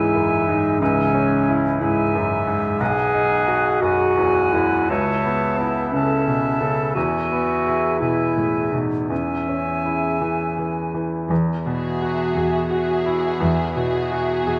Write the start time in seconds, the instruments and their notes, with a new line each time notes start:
Already playing: grand piano C#2 G#2 C#4 E4, harp C#3 E3 G#3 G#4, clarinet E4, oboe E5, flute G#5
0.15 grand piano F#2
0.47 grand piano G#2, harp G#3, clarinet D#4
0.80 grand piano C#2, harp C#3, clarinet C#4, oboe E5, flute G#5
1.14 grand piano C#4
1.48 harp E4, grand piano E4
1.80 grand piano G#2, clarinet E4, harp G#4, oboe E5, flute G#5
2.14 grand piano F#2, harp E4
2.47 grand piano G#2, harp G#3
2.80 grand piano B1, harp B2, clarinet G#4, oboe F#5, flute G#5
3.14 harp G#3, grand piano D#4
3.48 grand piano F#4, harp F#4
3.81 grand piano F#2, clarinet F#4, harp G#4, oboe F#5, flute G#5
4.17 grand piano E2, harp F#4
4.53 grand piano F#2, harp G#3, clarinet E4
4.89 grand piano C#2, harp C#3, clarinet C#5, oboe E5, flute A5
5.25 grand piano B3, harp B3
5.58 clarinet B3, harp C#4, grand piano E4
5.92 grand piano C#3, clarinet C#4, harp A4, oboe E5, flute A5
6.28 grand piano B2
6.60 grand piano C#3, harp B3, clarinet A4
6.94 grand piano E2, harp E3, clarinet F#4, oboe E5, flute G#5
7.32 grand piano B3
7.65 grand piano E4, harp G#4
8.00 grand piano B2, clarinet E4, harp B4, oboe E5, flute G#5
8.36 grand piano A2, harp G#4
8.72 grand piano B2, clarinet D#4
9.09 grand piano E2, harp E3, clarinet C#4, oboe E5, flute G#5
9.47 grand piano C#4, harp E4
9.85 grand piano E4, harp G#4
10.21 grand piano E3, harp C#5
10.57 grand piano E3, harp G#4
10.94 grand piano E3, harp E4
11.30 cello section E2, grand piano E2, harp E3
11.65 grand piano B2, harp B3, viola section F#4, violin section G#4 E5
12.01 harp F#4, grand piano F#4
12.36 cello section E2, grand piano G#4, harp E5
12.70 viola section F#4, grand piano F#4, harp F#4, violin section G#4 E5
13.06 harp B3, grand piano E4
13.40 grand piano E2, cello section E2, harp E3
13.75 grand piano B2, harp E4, viola section F#4, violin section G#4 E5
14.12 harp F#4, grand piano F#4
14.45 cello section E2, grand piano G#4, harp E5